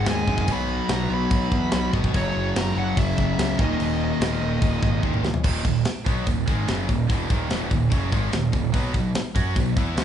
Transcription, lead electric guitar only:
0, 0, Header, 1, 2, 480
1, 0, Start_track
1, 0, Tempo, 412371
1, 570, Time_signature, 4, 2, 24, 8
1, 11691, End_track
2, 0, Start_track
2, 0, Title_t, "Lead electric guitar"
2, 0, Program_c, 0, 29
2, 110, Note_on_c, 0, 80, 104
2, 595, Note_off_c, 0, 80, 0
2, 605, Note_on_c, 0, 83, 106
2, 1073, Note_off_c, 0, 83, 0
2, 1078, Note_on_c, 0, 82, 104
2, 1312, Note_off_c, 0, 82, 0
2, 1326, Note_on_c, 0, 83, 108
2, 2225, Note_off_c, 0, 83, 0
2, 2515, Note_on_c, 0, 73, 89
2, 2999, Note_off_c, 0, 73, 0
2, 3008, Note_on_c, 0, 82, 97
2, 3235, Note_on_c, 0, 78, 93
2, 3239, Note_off_c, 0, 82, 0
2, 3472, Note_off_c, 0, 78, 0
2, 3477, Note_on_c, 0, 76, 92
2, 4207, Note_off_c, 0, 76, 0
2, 4211, Note_on_c, 0, 75, 93
2, 5828, Note_off_c, 0, 75, 0
2, 11691, End_track
0, 0, End_of_file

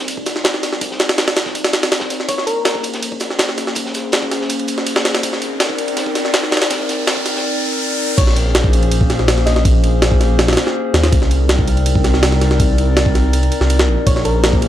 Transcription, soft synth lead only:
0, 0, Header, 1, 2, 480
1, 0, Start_track
1, 0, Tempo, 368098
1, 1064, Time_signature, 4, 2, 24, 8
1, 19144, End_track
2, 0, Start_track
2, 0, Title_t, "Soft synth lead"
2, 0, Program_c, 0, 80
2, 2980, Note_on_c, 0, 73, 88
2, 3061, Note_off_c, 0, 73, 0
2, 3099, Note_on_c, 0, 73, 75
2, 3178, Note_off_c, 0, 73, 0
2, 3217, Note_on_c, 0, 70, 96
2, 3700, Note_off_c, 0, 70, 0
2, 10662, Note_on_c, 0, 73, 94
2, 10743, Note_off_c, 0, 73, 0
2, 10787, Note_on_c, 0, 73, 73
2, 10862, Note_off_c, 0, 73, 0
2, 12338, Note_on_c, 0, 75, 91
2, 12420, Note_off_c, 0, 75, 0
2, 12463, Note_on_c, 0, 75, 80
2, 12540, Note_off_c, 0, 75, 0
2, 18342, Note_on_c, 0, 73, 87
2, 18422, Note_off_c, 0, 73, 0
2, 18462, Note_on_c, 0, 73, 78
2, 18539, Note_off_c, 0, 73, 0
2, 18582, Note_on_c, 0, 70, 96
2, 19063, Note_off_c, 0, 70, 0
2, 19144, End_track
0, 0, End_of_file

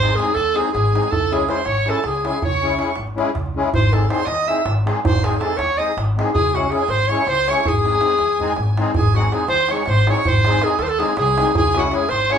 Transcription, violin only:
0, 0, Header, 1, 2, 480
1, 0, Start_track
1, 0, Tempo, 372671
1, 1448, Time_signature, 7, 3, 24, 8
1, 15949, End_track
2, 0, Start_track
2, 0, Title_t, "Violin"
2, 0, Program_c, 0, 40
2, 0, Note_on_c, 0, 84, 95
2, 229, Note_on_c, 0, 80, 79
2, 249, Note_off_c, 0, 84, 0
2, 468, Note_on_c, 0, 81, 83
2, 487, Note_off_c, 0, 80, 0
2, 723, Note_on_c, 0, 80, 74
2, 742, Note_off_c, 0, 81, 0
2, 929, Note_off_c, 0, 80, 0
2, 937, Note_on_c, 0, 80, 75
2, 1428, Note_on_c, 0, 81, 84
2, 1448, Note_off_c, 0, 80, 0
2, 1710, Note_on_c, 0, 80, 75
2, 1729, Note_off_c, 0, 81, 0
2, 1933, Note_on_c, 0, 84, 78
2, 1952, Note_off_c, 0, 80, 0
2, 2161, Note_on_c, 0, 85, 80
2, 2181, Note_off_c, 0, 84, 0
2, 2427, Note_on_c, 0, 81, 71
2, 2447, Note_off_c, 0, 85, 0
2, 2666, Note_on_c, 0, 80, 75
2, 2686, Note_off_c, 0, 81, 0
2, 2913, Note_off_c, 0, 80, 0
2, 2920, Note_on_c, 0, 80, 76
2, 3120, Note_off_c, 0, 80, 0
2, 3159, Note_on_c, 0, 85, 85
2, 3778, Note_off_c, 0, 85, 0
2, 4833, Note_on_c, 0, 84, 80
2, 5064, Note_on_c, 0, 81, 73
2, 5083, Note_off_c, 0, 84, 0
2, 5277, Note_off_c, 0, 81, 0
2, 5290, Note_on_c, 0, 84, 78
2, 5478, Note_on_c, 0, 87, 86
2, 5497, Note_off_c, 0, 84, 0
2, 5769, Note_on_c, 0, 88, 70
2, 5788, Note_off_c, 0, 87, 0
2, 5991, Note_off_c, 0, 88, 0
2, 6544, Note_on_c, 0, 84, 93
2, 6767, Note_on_c, 0, 80, 71
2, 6786, Note_off_c, 0, 84, 0
2, 6964, Note_on_c, 0, 81, 73
2, 6983, Note_off_c, 0, 80, 0
2, 7169, Note_on_c, 0, 85, 71
2, 7188, Note_off_c, 0, 81, 0
2, 7454, Note_on_c, 0, 87, 66
2, 7473, Note_off_c, 0, 85, 0
2, 7675, Note_off_c, 0, 87, 0
2, 8185, Note_on_c, 0, 80, 97
2, 8438, Note_on_c, 0, 78, 73
2, 8457, Note_off_c, 0, 80, 0
2, 8636, Note_on_c, 0, 80, 83
2, 8656, Note_off_c, 0, 78, 0
2, 8871, Note_on_c, 0, 84, 94
2, 8891, Note_off_c, 0, 80, 0
2, 9141, Note_on_c, 0, 85, 79
2, 9160, Note_off_c, 0, 84, 0
2, 9352, Note_on_c, 0, 84, 105
2, 9371, Note_off_c, 0, 85, 0
2, 9651, Note_on_c, 0, 85, 99
2, 9671, Note_off_c, 0, 84, 0
2, 9898, Note_on_c, 0, 80, 84
2, 9918, Note_off_c, 0, 85, 0
2, 11336, Note_off_c, 0, 80, 0
2, 11542, Note_on_c, 0, 80, 84
2, 11797, Note_on_c, 0, 78, 69
2, 11816, Note_off_c, 0, 80, 0
2, 12023, Note_on_c, 0, 80, 70
2, 12043, Note_off_c, 0, 78, 0
2, 12221, Note_off_c, 0, 80, 0
2, 12229, Note_on_c, 0, 84, 76
2, 12510, Note_on_c, 0, 85, 68
2, 12529, Note_off_c, 0, 84, 0
2, 12734, Note_on_c, 0, 84, 85
2, 12753, Note_off_c, 0, 85, 0
2, 13002, Note_off_c, 0, 84, 0
2, 13013, Note_on_c, 0, 85, 85
2, 13251, Note_on_c, 0, 84, 89
2, 13270, Note_off_c, 0, 85, 0
2, 13703, Note_on_c, 0, 80, 79
2, 13722, Note_off_c, 0, 84, 0
2, 13930, Note_on_c, 0, 81, 77
2, 13949, Note_off_c, 0, 80, 0
2, 13982, Note_on_c, 0, 84, 66
2, 14001, Note_off_c, 0, 81, 0
2, 14048, Note_on_c, 0, 81, 88
2, 14067, Note_off_c, 0, 84, 0
2, 14205, Note_on_c, 0, 80, 73
2, 14224, Note_off_c, 0, 81, 0
2, 14391, Note_off_c, 0, 80, 0
2, 14399, Note_on_c, 0, 80, 93
2, 14862, Note_off_c, 0, 80, 0
2, 14905, Note_on_c, 0, 80, 109
2, 15187, Note_on_c, 0, 78, 87
2, 15206, Note_off_c, 0, 80, 0
2, 15377, Note_on_c, 0, 80, 86
2, 15396, Note_off_c, 0, 78, 0
2, 15589, Note_on_c, 0, 84, 88
2, 15609, Note_off_c, 0, 80, 0
2, 15858, Note_on_c, 0, 85, 80
2, 15878, Note_off_c, 0, 84, 0
2, 15949, Note_off_c, 0, 85, 0
2, 15949, End_track
0, 0, End_of_file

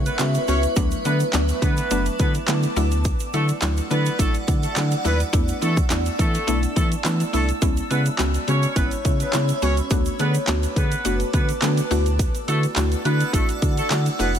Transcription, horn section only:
0, 0, Header, 1, 2, 480
1, 0, Start_track
1, 0, Tempo, 571429
1, 642, Time_signature, 4, 2, 24, 8
1, 12088, End_track
2, 0, Start_track
2, 0, Title_t, "Horn section"
2, 0, Program_c, 0, 61
2, 52, Note_on_c, 0, 71, 68
2, 57, Note_on_c, 0, 59, 54
2, 150, Note_off_c, 0, 71, 0
2, 153, Note_off_c, 0, 59, 0
2, 403, Note_on_c, 0, 73, 79
2, 409, Note_on_c, 0, 61, 62
2, 515, Note_off_c, 0, 73, 0
2, 518, Note_off_c, 0, 61, 0
2, 884, Note_on_c, 0, 71, 77
2, 890, Note_on_c, 0, 59, 59
2, 995, Note_off_c, 0, 71, 0
2, 998, Note_off_c, 0, 59, 0
2, 1363, Note_on_c, 0, 71, 80
2, 1370, Note_on_c, 0, 59, 60
2, 1708, Note_off_c, 0, 71, 0
2, 1711, Note_off_c, 0, 59, 0
2, 1842, Note_on_c, 0, 71, 82
2, 1848, Note_on_c, 0, 59, 64
2, 1954, Note_off_c, 0, 71, 0
2, 1957, Note_off_c, 0, 59, 0
2, 2804, Note_on_c, 0, 69, 79
2, 2811, Note_on_c, 0, 57, 63
2, 2915, Note_off_c, 0, 69, 0
2, 2919, Note_off_c, 0, 57, 0
2, 3282, Note_on_c, 0, 71, 90
2, 3289, Note_on_c, 0, 59, 71
2, 3493, Note_off_c, 0, 71, 0
2, 3497, Note_off_c, 0, 59, 0
2, 3526, Note_on_c, 0, 69, 100
2, 3532, Note_on_c, 0, 57, 76
2, 3636, Note_off_c, 0, 69, 0
2, 3640, Note_off_c, 0, 57, 0
2, 3891, Note_on_c, 0, 69, 79
2, 3897, Note_on_c, 0, 57, 65
2, 3989, Note_off_c, 0, 69, 0
2, 3993, Note_off_c, 0, 57, 0
2, 4244, Note_on_c, 0, 71, 83
2, 4251, Note_on_c, 0, 59, 65
2, 4355, Note_off_c, 0, 71, 0
2, 4359, Note_off_c, 0, 59, 0
2, 4723, Note_on_c, 0, 69, 81
2, 4730, Note_on_c, 0, 57, 65
2, 4834, Note_off_c, 0, 69, 0
2, 4838, Note_off_c, 0, 57, 0
2, 5201, Note_on_c, 0, 69, 85
2, 5208, Note_on_c, 0, 57, 70
2, 5547, Note_off_c, 0, 69, 0
2, 5550, Note_off_c, 0, 57, 0
2, 5682, Note_on_c, 0, 69, 82
2, 5687, Note_on_c, 0, 57, 61
2, 5794, Note_off_c, 0, 69, 0
2, 5796, Note_off_c, 0, 57, 0
2, 6161, Note_on_c, 0, 69, 84
2, 6167, Note_on_c, 0, 57, 64
2, 6273, Note_off_c, 0, 69, 0
2, 6277, Note_off_c, 0, 57, 0
2, 6641, Note_on_c, 0, 71, 81
2, 6649, Note_on_c, 0, 59, 63
2, 6753, Note_off_c, 0, 71, 0
2, 6758, Note_off_c, 0, 59, 0
2, 7125, Note_on_c, 0, 73, 79
2, 7132, Note_on_c, 0, 61, 60
2, 7335, Note_off_c, 0, 73, 0
2, 7338, Note_off_c, 0, 61, 0
2, 7363, Note_on_c, 0, 71, 96
2, 7370, Note_on_c, 0, 59, 73
2, 7474, Note_off_c, 0, 71, 0
2, 7478, Note_off_c, 0, 59, 0
2, 7733, Note_on_c, 0, 71, 70
2, 7740, Note_on_c, 0, 59, 55
2, 7831, Note_off_c, 0, 71, 0
2, 7834, Note_off_c, 0, 59, 0
2, 8087, Note_on_c, 0, 73, 79
2, 8094, Note_on_c, 0, 61, 61
2, 8197, Note_off_c, 0, 73, 0
2, 8201, Note_off_c, 0, 61, 0
2, 8565, Note_on_c, 0, 71, 79
2, 8571, Note_on_c, 0, 59, 62
2, 8675, Note_off_c, 0, 71, 0
2, 8679, Note_off_c, 0, 59, 0
2, 9044, Note_on_c, 0, 71, 82
2, 9050, Note_on_c, 0, 59, 62
2, 9388, Note_off_c, 0, 71, 0
2, 9391, Note_off_c, 0, 59, 0
2, 9525, Note_on_c, 0, 71, 84
2, 9532, Note_on_c, 0, 59, 65
2, 9636, Note_off_c, 0, 71, 0
2, 9639, Note_off_c, 0, 59, 0
2, 10484, Note_on_c, 0, 69, 82
2, 10491, Note_on_c, 0, 57, 62
2, 10595, Note_off_c, 0, 69, 0
2, 10599, Note_off_c, 0, 57, 0
2, 10964, Note_on_c, 0, 71, 85
2, 10972, Note_on_c, 0, 59, 67
2, 11174, Note_off_c, 0, 71, 0
2, 11179, Note_off_c, 0, 59, 0
2, 11204, Note_on_c, 0, 69, 98
2, 11210, Note_on_c, 0, 57, 76
2, 11315, Note_off_c, 0, 69, 0
2, 11318, Note_off_c, 0, 57, 0
2, 11570, Note_on_c, 0, 69, 83
2, 11576, Note_on_c, 0, 57, 62
2, 11669, Note_off_c, 0, 69, 0
2, 11672, Note_off_c, 0, 57, 0
2, 11923, Note_on_c, 0, 71, 81
2, 11929, Note_on_c, 0, 59, 64
2, 12034, Note_off_c, 0, 71, 0
2, 12038, Note_off_c, 0, 59, 0
2, 12088, End_track
0, 0, End_of_file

